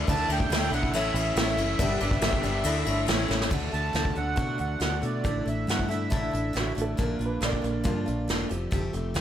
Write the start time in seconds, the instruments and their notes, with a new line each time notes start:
0.07 fingered electric bass D2, steel-string acoustic guitar D3 A3 D4 E4, tonewheel organ D4 E4 A4 D5, grand piano E4 A4 D5, accordion A5, kick, ride
0.28 fingered electric bass D2, steel-string acoustic guitar A3 D4 E4, ride
0.32 accordion G5
0.40 kick
0.50 fingered electric bass D2, steel-string acoustic guitar D3 A3 D4 E4, snare, ride
0.71 fingered electric bass B1, steel-string acoustic guitar D4 E4, accordion F#5, ride
0.75 steel-string acoustic guitar A3
0.83 kick
0.92 fingered electric bass A1, steel-string acoustic guitar A2 E3 A3 C#4, tonewheel organ C#4 E4 A4 C#5, grand piano E4 A4 C#5, accordion E5, ride
0.96 steel-string acoustic guitar E4
1.14 fingered electric bass A1, steel-string acoustic guitar C#4 E4, grand piano E4 A4 C#5, ride
1.18 steel-string acoustic guitar A3
1.36 fingered electric bass A1, clean electric guitar A2, steel-string acoustic guitar E3 A3 C#4, grand piano E4 A4 C#5, snare, ride
1.40 steel-string acoustic guitar E4
1.57 fingered electric bass F#1, steel-string acoustic guitar A3 C#4 E4, ride
1.78 fingered electric bass G1, steel-string acoustic guitar G2 D3 G3 B3 D4 G4, tonewheel organ D4 G4 B4 D5, grand piano G4 B4 D5, kick, ride
2.00 fingered electric bass G1, steel-string acoustic guitar B3 D4 G4, ride
2.05 steel-string acoustic guitar G3
2.11 kick, snare
2.21 fingered electric bass G1, steel-string acoustic guitar G3 B3 D4, snare, ride
2.25 steel-string acoustic guitar G4
2.33 kick
2.43 fingered electric bass G1, steel-string acoustic guitar G3 B3 D4 G4, ride
2.64 fingered electric bass D2, steel-string acoustic guitar D3 A3 D4 E4, tonewheel organ D4 E4 A4 D5, grand piano E4 A4 D5, ride
2.85 fingered electric bass G1, steel-string acoustic guitar A3 D4 E4, grand piano E4 A4 C#5, ride
3.06 fingered electric bass A1, clean electric guitar A2, steel-string acoustic guitar E3 A3 C#4 E4, tonewheel organ C#4 E4 A4 C#5, grand piano E4 A4 C#5, snare, ride
3.28 fingered electric bass A1, steel-string acoustic guitar A3 C#4 E4, snare
3.42 snare
3.50 fingered electric bass D2, steel-string acoustic guitar D3 A3 D4 F#4, kick, crash
3.72 fingered electric bass D2, steel-string acoustic guitar A3 D4 F#4, accordion A5, closed hi-hat
3.93 fingered electric bass D2, steel-string acoustic guitar D3 A3 D4 F#4, snare, closed hi-hat
4.05 kick
4.15 fingered electric bass D2, steel-string acoustic guitar A3 D4 F#4, accordion F#5, closed hi-hat
4.36 fingered electric bass B2, steel-string acoustic guitar D3 A3 D4 F#4, kick, closed hi-hat
4.58 fingered electric bass D2, steel-string acoustic guitar A3 D4 F#4, accordion F#5, closed hi-hat
4.80 fingered electric bass D2, steel-string acoustic guitar D3 A3 D4 F#4, accordion F#5, snare, closed hi-hat
5.02 fingered electric bass B2, steel-string acoustic guitar A3 D4 F#4, accordion D5, closed hi-hat
5.24 fingered electric bass A1, steel-string acoustic guitar A2 D3 A3 D4 E4, kick, closed hi-hat
5.46 fingered electric bass A1, steel-string acoustic guitar A3 D4 E4, accordion E5, closed hi-hat
5.67 fingered electric bass G2, steel-string acoustic guitar D3 A3 D4 E4, accordion F#5, snare, closed hi-hat
5.79 kick
5.89 steel-string acoustic guitar A3 D4 E4, accordion E5, closed hi-hat
6.10 fingered electric bass A1, steel-string acoustic guitar A2 D3 A3 D4 E4, kick, closed hi-hat
6.31 fingered electric bass A1, steel-string acoustic guitar A3 D4 E4, closed hi-hat
6.53 fingered electric bass A1, steel-string acoustic guitar D3 A3 D4 E4, snare, closed hi-hat
6.59 upright piano F#4
6.75 fingered electric bass A1, steel-string acoustic guitar A3 D4 E4, closed hi-hat
6.81 upright piano A4
6.97 fingered electric bass A#1, steel-string acoustic guitar A#2 F3 A#3 D4 F4, kick, closed hi-hat
7.03 upright piano A#4
7.19 fingered electric bass A#1, steel-string acoustic guitar A#3 D4 F4, closed hi-hat
7.25 upright piano B4
7.41 fingered electric bass A#1, clean electric guitar D3, steel-string acoustic guitar F3 A#3 D4 F4, upright piano D5, snare, closed hi-hat
7.53 kick
7.62 fingered electric bass A#1, steel-string acoustic guitar A#3 D4 F4, closed hi-hat
7.84 fingered electric bass G2, steel-string acoustic guitar A#2 F3 A#3 D4 F4, kick, closed hi-hat
8.06 fingered electric bass A#1, steel-string acoustic guitar A#3 D4 F4, closed hi-hat
8.28 fingered electric bass E1, clean electric guitar D3, steel-string acoustic guitar F3 A#3 D4 F4, snare, closed hi-hat
8.49 fingered electric bass F1, clean electric guitar F3, steel-string acoustic guitar A3 C4 G4, closed hi-hat
8.71 fingered electric bass F1, steel-string acoustic guitar F3 A3 C4 G4, kick, closed hi-hat
8.93 fingered electric bass F1, steel-string acoustic guitar A3 C4 G4, closed hi-hat
9.14 fingered electric bass D2, steel-string acoustic guitar F3 A3 C4 G4, snare, closed hi-hat